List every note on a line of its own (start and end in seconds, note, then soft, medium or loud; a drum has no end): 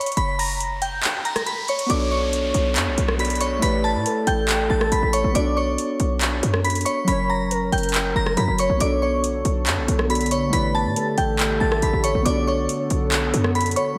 0.00 0.12 C#5 medium
0.00 0.11 C#6 medium
0.00 closed hi-hat medium
0.00 riser medium
0.06 closed hi-hat medium
0.12 closed hi-hat soft
0.17 1.00 F#1 loud
0.17 0.33 B5 loud
0.17 0.34 B6 medium
0.17 closed hi-hat medium
0.39 0.79 A#5 medium
0.39 0.80 A#6 medium
0.39 open hi-hat loud
0.60 closed hi-hat medium
0.82 1.22 G5 medium
0.82 1.23 G6 medium
0.82 closed hi-hat medium
1.03 clap loud
1.03 closed hi-hat medium
1.25 1.41 A#5 medium
1.25 1.42 A#6 medium
1.25 closed hi-hat soft
1.36 cross-stick loud
1.36 closed hi-hat medium
1.46 1.63 B5 medium
1.46 1.63 B6 medium
1.46 closed hi-hat medium
1.68 1.85 C#5 medium
1.68 1.85 C#6 medium
1.68 closed hi-hat soft
1.79 closed hi-hat medium
1.86 2.52 B1 loud
1.86 3.15 B3 medium
1.86 3.16 F#4 medium
1.86 2.72 C#5 loud
1.86 2.06 D6 loud
1.86 closed hi-hat medium
1.86 downlifter medium
1.91 3.18 D4 medium
1.91 3.17 A4 medium
1.91 2.07 D5 medium
2.12 3.16 C#5 medium
2.12 3.15 C#6 medium
2.33 closed hi-hat medium
2.54 2.78 B1 loud
2.54 closed hi-hat medium
2.76 2.88 F#2 loud
2.76 clap loud
2.76 closed hi-hat medium
2.87 2.97 B1 loud
2.98 3.60 B1 loud
2.98 closed hi-hat medium
3.08 cross-stick loud
3.18 3.62 B3 medium
3.18 3.62 F#4 medium
3.18 3.63 A4 soft
3.18 3.63 D5 medium
3.18 3.36 B5 medium
3.18 3.36 B6 medium
3.18 closed hi-hat medium
3.25 closed hi-hat medium
3.30 closed hi-hat medium
3.35 closed hi-hat medium
3.41 3.58 C#5 medium
3.41 3.57 C#6 medium
3.41 closed hi-hat medium
3.59 3.96 A1 loud
3.59 5.30 A3 medium
3.59 5.31 E4 medium
3.59 4.03 B4 medium
3.59 3.79 B5 loud
3.59 closed hi-hat medium
3.63 5.32 G4 medium
3.63 5.33 D5 medium
3.63 3.79 B6 medium
3.84 4.25 A5 medium
3.84 4.25 A6 medium
3.95 4.05 A2 loud
4.05 5.31 A4 loud
4.05 closed hi-hat medium
4.27 4.69 A1 loud
4.27 4.68 G5 medium
4.27 4.68 G6 medium
4.27 closed hi-hat medium
4.49 clap loud
4.49 closed hi-hat medium
4.70 4.91 A1 loud
4.70 4.86 A5 medium
4.70 4.87 A6 medium
4.81 cross-stick loud
4.92 5.02 A1 loud
4.92 5.08 B5 medium
4.92 5.09 B6 medium
4.92 closed hi-hat medium
5.03 5.23 A1 loud
5.13 5.30 C#5 medium
5.13 5.30 C#6 medium
5.13 closed hi-hat medium
5.24 5.35 A1 loud
5.32 5.77 B1 loud
5.32 7.03 B3 medium
5.32 7.04 F#4 medium
5.32 6.18 D5 loud
5.32 5.51 D6 loud
5.32 closed hi-hat medium
5.36 7.06 D4 medium
5.36 7.05 A4 medium
5.36 5.52 D5 medium
5.57 6.61 C#5 medium
5.57 6.61 C#6 medium
5.78 closed hi-hat medium
6.00 6.41 B1 loud
6.00 closed hi-hat medium
6.21 clap loud
6.21 closed hi-hat medium
6.43 6.84 F#2 loud
6.43 closed hi-hat medium
6.54 cross-stick loud
6.64 6.81 B5 medium
6.64 6.81 B6 medium
6.64 closed hi-hat medium
6.70 closed hi-hat medium
6.75 closed hi-hat medium
6.81 closed hi-hat medium
6.85 7.02 C#5 medium
6.85 7.02 C#6 medium
6.85 closed hi-hat medium
7.04 7.70 F#1 loud
7.04 8.33 F#3 medium
7.04 8.34 C#4 medium
7.04 7.48 C#5 loud
7.04 7.24 B5 loud
7.04 closed hi-hat medium
7.08 8.35 A#4 medium
7.08 8.36 C#5 medium
7.08 7.25 B6 medium
7.30 7.70 A#5 medium
7.30 7.71 A#6 medium
7.51 8.55 A#4 loud
7.51 closed hi-hat medium
7.72 8.14 F#1 loud
7.72 8.13 G5 medium
7.72 8.13 G6 medium
7.72 closed hi-hat soft
7.78 closed hi-hat soft
7.83 closed hi-hat medium
7.89 closed hi-hat medium
7.94 clap loud
7.94 closed hi-hat medium
8.16 8.36 F#1 loud
8.16 8.32 A#5 medium
8.16 8.33 A#6 medium
8.26 cross-stick loud
8.36 8.48 F#2 loud
8.36 8.80 F#3 medium
8.36 8.78 F#4 soft
8.36 8.81 A#4 soft
8.36 8.81 C#5 medium
8.36 8.53 B5 medium
8.36 8.54 B6 medium
8.36 closed hi-hat medium
8.48 8.69 F#1 loud
8.58 8.79 C#5 medium
8.58 8.76 C#5 medium
8.58 8.76 C#6 medium
8.58 closed hi-hat medium
8.70 8.80 A#1 loud
8.77 9.43 B1 loud
8.77 13.94 D3 medium
8.77 10.06 B3 medium
8.77 10.51 B3 medium
8.77 10.07 F#4 medium
8.77 10.51 A4 medium
8.77 9.63 C#5 loud
8.77 8.97 D6 loud
8.77 closed hi-hat medium
8.82 10.09 D4 medium
8.82 10.08 A4 medium
8.82 8.97 D5 medium
9.02 10.06 C#5 medium
9.02 10.06 C#6 medium
9.24 closed hi-hat medium
9.45 9.68 B1 loud
9.45 closed hi-hat medium
9.67 9.79 F#2 loud
9.67 clap loud
9.67 closed hi-hat medium
9.78 9.88 B1 loud
9.88 10.50 B1 loud
9.88 closed hi-hat medium
9.99 cross-stick loud
10.08 10.52 B3 medium
10.08 10.53 F#4 medium
10.08 10.53 A4 medium
10.08 10.54 D5 medium
10.08 10.26 B5 medium
10.08 10.27 B6 medium
10.08 closed hi-hat medium
10.15 closed hi-hat medium
10.21 closed hi-hat medium
10.26 closed hi-hat medium
10.31 10.48 C#5 medium
10.31 10.48 C#6 medium
10.31 closed hi-hat medium
10.50 10.87 A1 loud
10.50 12.20 A3 medium
10.50 12.24 A3 medium
10.50 12.22 E4 medium
10.50 12.24 G4 loud
10.50 10.94 B4 medium
10.50 10.69 B5 loud
10.50 closed hi-hat medium
10.54 12.23 G4 medium
10.54 12.24 D5 medium
10.54 10.70 B6 medium
10.75 11.15 A5 medium
10.75 11.16 A6 medium
10.85 10.96 A2 loud
10.96 12.22 A4 loud
10.96 closed hi-hat medium
11.18 11.59 A1 loud
11.18 11.58 G5 medium
11.18 11.59 G6 medium
11.18 closed hi-hat medium
11.39 clap loud
11.39 closed hi-hat medium
11.60 11.82 A1 loud
11.60 11.77 A5 medium
11.60 11.77 A6 medium
11.72 cross-stick loud
11.82 11.93 A1 loud
11.82 11.99 B5 medium
11.82 11.99 B6 medium
11.82 closed hi-hat medium
11.93 12.14 A1 loud
12.04 12.21 C#5 medium
12.04 12.20 C#6 medium
12.04 closed hi-hat medium
12.15 12.25 A1 loud
12.22 12.67 B1 loud
12.22 13.93 B3 medium
12.22 13.97 B3 medium
12.22 13.94 F#4 medium
12.22 13.97 A4 loud
12.22 13.08 D5 loud
12.22 12.42 D5 medium
12.22 12.42 D6 loud
12.22 closed hi-hat medium
12.27 13.97 D4 medium
12.27 13.96 A4 medium
12.47 13.52 C#5 medium
12.47 13.51 C#6 medium
12.69 closed hi-hat medium
12.90 13.32 B1 loud
12.90 closed hi-hat medium
13.12 clap loud
13.12 closed hi-hat medium
13.34 13.75 F#2 loud
13.34 closed hi-hat medium
13.44 cross-stick loud
13.55 13.72 B5 medium
13.55 13.72 B6 medium
13.55 closed hi-hat medium
13.61 closed hi-hat medium
13.66 closed hi-hat medium
13.71 closed hi-hat medium
13.76 13.93 C#5 medium
13.76 13.93 C#6 medium
13.76 closed hi-hat medium
13.95 13.98 F#3 medium